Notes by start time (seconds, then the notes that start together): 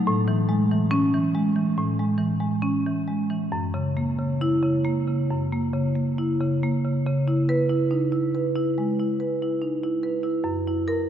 0.07 A2
0.28 E3
0.49 G#3
0.71 E3
0.91 C#4
1.14 E3
1.35 G#3
1.56 E3
1.78 A2
1.99 G#3
2.18 E3
2.40 G#3
2.62 C#4
2.87 E3
3.08 G#3
3.30 E3
3.52 F#2
3.74 C#3
3.97 A#3
4.19 C#3
4.41 E4
4.62 C#3
4.85 A#3
5.07 C#3
5.31 F#2
5.53 A#3
5.73 C#3
5.95 A#3
6.18 E4
6.40 C#3
6.63 A#3
6.84 C#3
7.06 C#3
7.28 E4
7.49 B4
7.69 E4
7.91 D#4
8.12 E4
8.35 B4
8.55 E4
8.78 G#3
8.99 E4
9.20 B4
9.42 E4
9.62 D#4
9.84 E4
10.03 B4
10.23 E4
10.44 F#2
10.68 E4
10.88 A#4